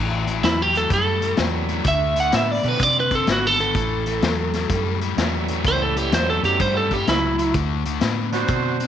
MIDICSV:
0, 0, Header, 1, 7, 480
1, 0, Start_track
1, 0, Tempo, 473934
1, 1881, Time_signature, 4, 2, 24, 8
1, 8984, End_track
2, 0, Start_track
2, 0, Title_t, "Lead electric guitar"
2, 0, Program_c, 0, 29
2, 455, Note_on_c, 0, 64, 83
2, 630, Note_off_c, 0, 64, 0
2, 630, Note_on_c, 0, 67, 77
2, 771, Note_off_c, 0, 67, 0
2, 783, Note_on_c, 0, 69, 87
2, 928, Note_off_c, 0, 69, 0
2, 947, Note_on_c, 0, 69, 88
2, 1400, Note_off_c, 0, 69, 0
2, 1905, Note_on_c, 0, 76, 95
2, 2204, Note_off_c, 0, 76, 0
2, 2230, Note_on_c, 0, 78, 79
2, 2371, Note_off_c, 0, 78, 0
2, 2380, Note_on_c, 0, 76, 75
2, 2547, Note_off_c, 0, 76, 0
2, 2547, Note_on_c, 0, 74, 90
2, 2717, Note_off_c, 0, 74, 0
2, 2717, Note_on_c, 0, 71, 81
2, 2865, Note_off_c, 0, 71, 0
2, 2865, Note_on_c, 0, 74, 85
2, 3008, Note_off_c, 0, 74, 0
2, 3039, Note_on_c, 0, 71, 82
2, 3176, Note_off_c, 0, 71, 0
2, 3191, Note_on_c, 0, 69, 88
2, 3332, Note_off_c, 0, 69, 0
2, 3358, Note_on_c, 0, 66, 86
2, 3513, Note_off_c, 0, 66, 0
2, 3513, Note_on_c, 0, 69, 95
2, 3638, Note_off_c, 0, 69, 0
2, 3651, Note_on_c, 0, 69, 81
2, 5045, Note_off_c, 0, 69, 0
2, 5752, Note_on_c, 0, 72, 111
2, 5891, Note_off_c, 0, 72, 0
2, 5895, Note_on_c, 0, 69, 82
2, 6048, Note_off_c, 0, 69, 0
2, 6048, Note_on_c, 0, 67, 89
2, 6199, Note_off_c, 0, 67, 0
2, 6224, Note_on_c, 0, 72, 88
2, 6367, Note_off_c, 0, 72, 0
2, 6377, Note_on_c, 0, 69, 78
2, 6524, Note_off_c, 0, 69, 0
2, 6533, Note_on_c, 0, 67, 80
2, 6681, Note_off_c, 0, 67, 0
2, 6698, Note_on_c, 0, 72, 89
2, 6844, Note_off_c, 0, 72, 0
2, 6854, Note_on_c, 0, 69, 85
2, 7022, Note_off_c, 0, 69, 0
2, 7022, Note_on_c, 0, 67, 91
2, 7166, Note_off_c, 0, 67, 0
2, 7178, Note_on_c, 0, 64, 84
2, 7633, Note_off_c, 0, 64, 0
2, 8984, End_track
3, 0, Start_track
3, 0, Title_t, "Horn section"
3, 0, Program_c, 1, 61
3, 8424, Note_on_c, 1, 62, 87
3, 8437, Note_on_c, 1, 66, 91
3, 8446, Note_on_c, 1, 72, 99
3, 8973, Note_off_c, 1, 62, 0
3, 8980, Note_off_c, 1, 66, 0
3, 8984, Note_off_c, 1, 72, 0
3, 8984, End_track
4, 0, Start_track
4, 0, Title_t, "Tonewheel organ"
4, 0, Program_c, 2, 16
4, 1388, Note_on_c, 2, 55, 65
4, 1396, Note_on_c, 2, 57, 59
4, 1399, Note_on_c, 2, 59, 61
4, 1401, Note_on_c, 2, 61, 61
4, 1402, Note_on_c, 2, 64, 77
4, 1875, Note_off_c, 2, 55, 0
4, 1879, Note_off_c, 2, 57, 0
4, 1880, Note_off_c, 2, 59, 0
4, 1881, Note_off_c, 2, 61, 0
4, 1882, Note_off_c, 2, 64, 0
4, 2677, Note_on_c, 2, 54, 72
4, 2678, Note_on_c, 2, 57, 66
4, 2684, Note_on_c, 2, 60, 66
4, 2689, Note_on_c, 2, 64, 79
4, 2690, Note_on_c, 2, 62, 70
4, 2824, Note_off_c, 2, 54, 0
4, 2825, Note_off_c, 2, 57, 0
4, 2828, Note_off_c, 2, 60, 0
4, 2831, Note_off_c, 2, 62, 0
4, 2831, Note_off_c, 2, 64, 0
4, 5228, Note_on_c, 2, 55, 61
4, 5237, Note_on_c, 2, 57, 53
4, 5238, Note_on_c, 2, 61, 54
4, 5240, Note_on_c, 2, 64, 68
4, 5243, Note_on_c, 2, 59, 60
4, 5698, Note_off_c, 2, 55, 0
4, 5701, Note_off_c, 2, 57, 0
4, 5705, Note_off_c, 2, 59, 0
4, 5709, Note_off_c, 2, 61, 0
4, 5709, Note_off_c, 2, 64, 0
4, 5710, Note_on_c, 2, 55, 76
4, 5713, Note_on_c, 2, 57, 67
4, 5718, Note_on_c, 2, 59, 67
4, 5721, Note_on_c, 2, 61, 69
4, 5721, Note_on_c, 2, 64, 77
4, 7055, Note_off_c, 2, 55, 0
4, 7057, Note_off_c, 2, 57, 0
4, 7059, Note_off_c, 2, 59, 0
4, 7061, Note_off_c, 2, 61, 0
4, 7061, Note_off_c, 2, 64, 0
4, 8984, End_track
5, 0, Start_track
5, 0, Title_t, "Overdriven electric guitar"
5, 0, Program_c, 3, 29
5, 0, Note_on_c, 3, 45, 72
5, 0, Note_on_c, 3, 52, 90
5, 242, Note_off_c, 3, 45, 0
5, 249, Note_off_c, 3, 52, 0
5, 271, Note_on_c, 3, 45, 63
5, 282, Note_on_c, 3, 52, 81
5, 422, Note_off_c, 3, 45, 0
5, 427, Note_off_c, 3, 52, 0
5, 437, Note_on_c, 3, 45, 73
5, 442, Note_on_c, 3, 54, 78
5, 723, Note_off_c, 3, 45, 0
5, 726, Note_off_c, 3, 54, 0
5, 734, Note_on_c, 3, 45, 79
5, 740, Note_on_c, 3, 54, 78
5, 893, Note_off_c, 3, 45, 0
5, 896, Note_off_c, 3, 54, 0
5, 911, Note_on_c, 3, 45, 88
5, 913, Note_on_c, 3, 55, 84
5, 1200, Note_off_c, 3, 45, 0
5, 1201, Note_off_c, 3, 55, 0
5, 1219, Note_on_c, 3, 45, 71
5, 1228, Note_on_c, 3, 55, 77
5, 1370, Note_off_c, 3, 45, 0
5, 1380, Note_off_c, 3, 55, 0
5, 1383, Note_on_c, 3, 45, 83
5, 1392, Note_on_c, 3, 54, 93
5, 1676, Note_off_c, 3, 45, 0
5, 1681, Note_off_c, 3, 54, 0
5, 1705, Note_on_c, 3, 45, 80
5, 1713, Note_on_c, 3, 54, 73
5, 1859, Note_off_c, 3, 45, 0
5, 1863, Note_off_c, 3, 54, 0
5, 1863, Note_on_c, 3, 50, 77
5, 1868, Note_on_c, 3, 57, 98
5, 2157, Note_off_c, 3, 50, 0
5, 2159, Note_off_c, 3, 57, 0
5, 2181, Note_on_c, 3, 50, 71
5, 2182, Note_on_c, 3, 57, 75
5, 2337, Note_off_c, 3, 50, 0
5, 2337, Note_off_c, 3, 57, 0
5, 2349, Note_on_c, 3, 50, 66
5, 2355, Note_on_c, 3, 59, 77
5, 2639, Note_off_c, 3, 50, 0
5, 2642, Note_off_c, 3, 59, 0
5, 2665, Note_on_c, 3, 50, 79
5, 2674, Note_on_c, 3, 59, 78
5, 2814, Note_off_c, 3, 50, 0
5, 2823, Note_off_c, 3, 59, 0
5, 2827, Note_on_c, 3, 50, 77
5, 2837, Note_on_c, 3, 60, 88
5, 3118, Note_off_c, 3, 50, 0
5, 3124, Note_off_c, 3, 60, 0
5, 3152, Note_on_c, 3, 50, 72
5, 3157, Note_on_c, 3, 60, 81
5, 3302, Note_off_c, 3, 50, 0
5, 3305, Note_off_c, 3, 60, 0
5, 3319, Note_on_c, 3, 50, 89
5, 3328, Note_on_c, 3, 59, 97
5, 3604, Note_off_c, 3, 50, 0
5, 3609, Note_off_c, 3, 59, 0
5, 3643, Note_on_c, 3, 50, 66
5, 3646, Note_on_c, 3, 59, 70
5, 3787, Note_off_c, 3, 50, 0
5, 3789, Note_off_c, 3, 59, 0
5, 3807, Note_on_c, 3, 45, 77
5, 3812, Note_on_c, 3, 52, 89
5, 4088, Note_off_c, 3, 45, 0
5, 4090, Note_off_c, 3, 52, 0
5, 4121, Note_on_c, 3, 45, 70
5, 4123, Note_on_c, 3, 52, 77
5, 4267, Note_off_c, 3, 45, 0
5, 4268, Note_off_c, 3, 52, 0
5, 4289, Note_on_c, 3, 45, 70
5, 4290, Note_on_c, 3, 54, 84
5, 4569, Note_off_c, 3, 45, 0
5, 4569, Note_off_c, 3, 54, 0
5, 4597, Note_on_c, 3, 45, 74
5, 4602, Note_on_c, 3, 54, 88
5, 4745, Note_off_c, 3, 45, 0
5, 4747, Note_off_c, 3, 54, 0
5, 4771, Note_on_c, 3, 45, 93
5, 4775, Note_on_c, 3, 55, 99
5, 5050, Note_off_c, 3, 45, 0
5, 5052, Note_off_c, 3, 55, 0
5, 5079, Note_on_c, 3, 55, 77
5, 5083, Note_on_c, 3, 45, 65
5, 5225, Note_off_c, 3, 55, 0
5, 5227, Note_off_c, 3, 45, 0
5, 5245, Note_on_c, 3, 45, 89
5, 5248, Note_on_c, 3, 54, 90
5, 5527, Note_off_c, 3, 45, 0
5, 5528, Note_off_c, 3, 54, 0
5, 5558, Note_on_c, 3, 45, 79
5, 5567, Note_on_c, 3, 54, 70
5, 5705, Note_off_c, 3, 45, 0
5, 5709, Note_off_c, 3, 54, 0
5, 5723, Note_on_c, 3, 45, 92
5, 5730, Note_on_c, 3, 52, 85
5, 6005, Note_off_c, 3, 45, 0
5, 6009, Note_off_c, 3, 52, 0
5, 6042, Note_on_c, 3, 45, 71
5, 6045, Note_on_c, 3, 52, 87
5, 6186, Note_off_c, 3, 45, 0
5, 6188, Note_off_c, 3, 52, 0
5, 6203, Note_on_c, 3, 54, 88
5, 6205, Note_on_c, 3, 45, 69
5, 6485, Note_off_c, 3, 54, 0
5, 6486, Note_off_c, 3, 45, 0
5, 6517, Note_on_c, 3, 45, 75
5, 6526, Note_on_c, 3, 54, 85
5, 6664, Note_off_c, 3, 45, 0
5, 6668, Note_off_c, 3, 54, 0
5, 6686, Note_on_c, 3, 45, 78
5, 6692, Note_on_c, 3, 55, 86
5, 6966, Note_off_c, 3, 45, 0
5, 6969, Note_off_c, 3, 55, 0
5, 6996, Note_on_c, 3, 45, 74
5, 6998, Note_on_c, 3, 55, 83
5, 7143, Note_off_c, 3, 45, 0
5, 7144, Note_off_c, 3, 55, 0
5, 7167, Note_on_c, 3, 54, 92
5, 7170, Note_on_c, 3, 45, 90
5, 7447, Note_off_c, 3, 54, 0
5, 7448, Note_off_c, 3, 45, 0
5, 7476, Note_on_c, 3, 45, 70
5, 7479, Note_on_c, 3, 54, 70
5, 7623, Note_off_c, 3, 45, 0
5, 7624, Note_off_c, 3, 54, 0
5, 7643, Note_on_c, 3, 50, 72
5, 7652, Note_on_c, 3, 57, 78
5, 7925, Note_off_c, 3, 50, 0
5, 7929, Note_off_c, 3, 57, 0
5, 7959, Note_on_c, 3, 50, 75
5, 7963, Note_on_c, 3, 57, 82
5, 8102, Note_off_c, 3, 50, 0
5, 8106, Note_off_c, 3, 57, 0
5, 8114, Note_on_c, 3, 50, 67
5, 8114, Note_on_c, 3, 59, 89
5, 8400, Note_off_c, 3, 50, 0
5, 8400, Note_off_c, 3, 59, 0
5, 8432, Note_on_c, 3, 50, 70
5, 8434, Note_on_c, 3, 59, 81
5, 8580, Note_off_c, 3, 50, 0
5, 8581, Note_off_c, 3, 59, 0
5, 8593, Note_on_c, 3, 50, 80
5, 8596, Note_on_c, 3, 60, 83
5, 8879, Note_off_c, 3, 50, 0
5, 8880, Note_off_c, 3, 60, 0
5, 8918, Note_on_c, 3, 50, 63
5, 8920, Note_on_c, 3, 60, 83
5, 8984, Note_off_c, 3, 50, 0
5, 8984, Note_off_c, 3, 60, 0
5, 8984, End_track
6, 0, Start_track
6, 0, Title_t, "Fingered electric bass"
6, 0, Program_c, 4, 33
6, 0, Note_on_c, 4, 33, 90
6, 421, Note_off_c, 4, 33, 0
6, 436, Note_on_c, 4, 40, 86
6, 899, Note_off_c, 4, 40, 0
6, 917, Note_on_c, 4, 42, 82
6, 1379, Note_off_c, 4, 42, 0
6, 1402, Note_on_c, 4, 40, 80
6, 1862, Note_off_c, 4, 40, 0
6, 1873, Note_on_c, 4, 38, 87
6, 2338, Note_off_c, 4, 38, 0
6, 2362, Note_on_c, 4, 45, 87
6, 2665, Note_off_c, 4, 45, 0
6, 2675, Note_on_c, 4, 47, 89
6, 2828, Note_off_c, 4, 47, 0
6, 2834, Note_on_c, 4, 48, 83
6, 3298, Note_off_c, 4, 48, 0
6, 3311, Note_on_c, 4, 32, 94
6, 3776, Note_off_c, 4, 32, 0
6, 3800, Note_on_c, 4, 33, 99
6, 4261, Note_off_c, 4, 33, 0
6, 4276, Note_on_c, 4, 40, 98
6, 4739, Note_off_c, 4, 40, 0
6, 4760, Note_on_c, 4, 42, 95
6, 5221, Note_off_c, 4, 42, 0
6, 5239, Note_on_c, 4, 40, 76
6, 5700, Note_off_c, 4, 40, 0
6, 5719, Note_on_c, 4, 37, 89
6, 6180, Note_off_c, 4, 37, 0
6, 6199, Note_on_c, 4, 40, 89
6, 6502, Note_off_c, 4, 40, 0
6, 6515, Note_on_c, 4, 42, 86
6, 6673, Note_off_c, 4, 42, 0
6, 6684, Note_on_c, 4, 43, 91
6, 7142, Note_off_c, 4, 43, 0
6, 7166, Note_on_c, 4, 37, 91
6, 7622, Note_off_c, 4, 37, 0
6, 7641, Note_on_c, 4, 38, 90
6, 8100, Note_off_c, 4, 38, 0
6, 8124, Note_on_c, 4, 45, 90
6, 8581, Note_off_c, 4, 45, 0
6, 8596, Note_on_c, 4, 47, 91
6, 8984, Note_off_c, 4, 47, 0
6, 8984, End_track
7, 0, Start_track
7, 0, Title_t, "Drums"
7, 276, Note_on_c, 9, 42, 59
7, 377, Note_off_c, 9, 42, 0
7, 437, Note_on_c, 9, 42, 78
7, 443, Note_on_c, 9, 38, 112
7, 538, Note_off_c, 9, 42, 0
7, 544, Note_off_c, 9, 38, 0
7, 756, Note_on_c, 9, 42, 62
7, 857, Note_off_c, 9, 42, 0
7, 915, Note_on_c, 9, 36, 99
7, 915, Note_on_c, 9, 42, 83
7, 1016, Note_off_c, 9, 36, 0
7, 1016, Note_off_c, 9, 42, 0
7, 1234, Note_on_c, 9, 42, 57
7, 1335, Note_off_c, 9, 42, 0
7, 1385, Note_on_c, 9, 42, 73
7, 1391, Note_on_c, 9, 38, 104
7, 1486, Note_off_c, 9, 42, 0
7, 1493, Note_off_c, 9, 38, 0
7, 1708, Note_on_c, 9, 42, 59
7, 1809, Note_off_c, 9, 42, 0
7, 1865, Note_on_c, 9, 42, 83
7, 1872, Note_on_c, 9, 36, 101
7, 1967, Note_off_c, 9, 42, 0
7, 1973, Note_off_c, 9, 36, 0
7, 2189, Note_on_c, 9, 42, 62
7, 2290, Note_off_c, 9, 42, 0
7, 2352, Note_on_c, 9, 42, 86
7, 2358, Note_on_c, 9, 38, 118
7, 2453, Note_off_c, 9, 42, 0
7, 2459, Note_off_c, 9, 38, 0
7, 2667, Note_on_c, 9, 42, 52
7, 2768, Note_off_c, 9, 42, 0
7, 2828, Note_on_c, 9, 42, 73
7, 2834, Note_on_c, 9, 36, 92
7, 2929, Note_off_c, 9, 42, 0
7, 2936, Note_off_c, 9, 36, 0
7, 3146, Note_on_c, 9, 42, 52
7, 3151, Note_on_c, 9, 36, 66
7, 3247, Note_off_c, 9, 42, 0
7, 3252, Note_off_c, 9, 36, 0
7, 3311, Note_on_c, 9, 42, 78
7, 3318, Note_on_c, 9, 38, 86
7, 3413, Note_off_c, 9, 42, 0
7, 3419, Note_off_c, 9, 38, 0
7, 3635, Note_on_c, 9, 42, 50
7, 3736, Note_off_c, 9, 42, 0
7, 3797, Note_on_c, 9, 36, 103
7, 3800, Note_on_c, 9, 42, 73
7, 3898, Note_off_c, 9, 36, 0
7, 3901, Note_off_c, 9, 42, 0
7, 4111, Note_on_c, 9, 42, 59
7, 4212, Note_off_c, 9, 42, 0
7, 4276, Note_on_c, 9, 42, 80
7, 4282, Note_on_c, 9, 38, 112
7, 4377, Note_off_c, 9, 42, 0
7, 4383, Note_off_c, 9, 38, 0
7, 4592, Note_on_c, 9, 42, 63
7, 4598, Note_on_c, 9, 38, 31
7, 4694, Note_off_c, 9, 42, 0
7, 4700, Note_off_c, 9, 38, 0
7, 4755, Note_on_c, 9, 42, 79
7, 4757, Note_on_c, 9, 36, 104
7, 4856, Note_off_c, 9, 42, 0
7, 4858, Note_off_c, 9, 36, 0
7, 5076, Note_on_c, 9, 42, 56
7, 5177, Note_off_c, 9, 42, 0
7, 5243, Note_on_c, 9, 42, 81
7, 5249, Note_on_c, 9, 38, 107
7, 5345, Note_off_c, 9, 42, 0
7, 5351, Note_off_c, 9, 38, 0
7, 5552, Note_on_c, 9, 42, 66
7, 5653, Note_off_c, 9, 42, 0
7, 5716, Note_on_c, 9, 42, 77
7, 5718, Note_on_c, 9, 36, 108
7, 5817, Note_off_c, 9, 42, 0
7, 5819, Note_off_c, 9, 36, 0
7, 6041, Note_on_c, 9, 42, 66
7, 6142, Note_off_c, 9, 42, 0
7, 6200, Note_on_c, 9, 42, 88
7, 6206, Note_on_c, 9, 38, 100
7, 6301, Note_off_c, 9, 42, 0
7, 6307, Note_off_c, 9, 38, 0
7, 6520, Note_on_c, 9, 42, 58
7, 6621, Note_off_c, 9, 42, 0
7, 6681, Note_on_c, 9, 42, 80
7, 6683, Note_on_c, 9, 36, 107
7, 6783, Note_off_c, 9, 42, 0
7, 6784, Note_off_c, 9, 36, 0
7, 6999, Note_on_c, 9, 36, 67
7, 7002, Note_on_c, 9, 42, 49
7, 7101, Note_off_c, 9, 36, 0
7, 7103, Note_off_c, 9, 42, 0
7, 7163, Note_on_c, 9, 42, 70
7, 7169, Note_on_c, 9, 38, 96
7, 7265, Note_off_c, 9, 42, 0
7, 7271, Note_off_c, 9, 38, 0
7, 7483, Note_on_c, 9, 42, 60
7, 7584, Note_off_c, 9, 42, 0
7, 7636, Note_on_c, 9, 42, 73
7, 7640, Note_on_c, 9, 36, 116
7, 7737, Note_off_c, 9, 42, 0
7, 7742, Note_off_c, 9, 36, 0
7, 7954, Note_on_c, 9, 42, 63
7, 8055, Note_off_c, 9, 42, 0
7, 8110, Note_on_c, 9, 42, 82
7, 8116, Note_on_c, 9, 38, 104
7, 8211, Note_off_c, 9, 42, 0
7, 8217, Note_off_c, 9, 38, 0
7, 8430, Note_on_c, 9, 42, 54
7, 8436, Note_on_c, 9, 38, 32
7, 8531, Note_off_c, 9, 42, 0
7, 8537, Note_off_c, 9, 38, 0
7, 8586, Note_on_c, 9, 42, 74
7, 8595, Note_on_c, 9, 36, 116
7, 8688, Note_off_c, 9, 42, 0
7, 8696, Note_off_c, 9, 36, 0
7, 8911, Note_on_c, 9, 42, 54
7, 8984, Note_off_c, 9, 42, 0
7, 8984, End_track
0, 0, End_of_file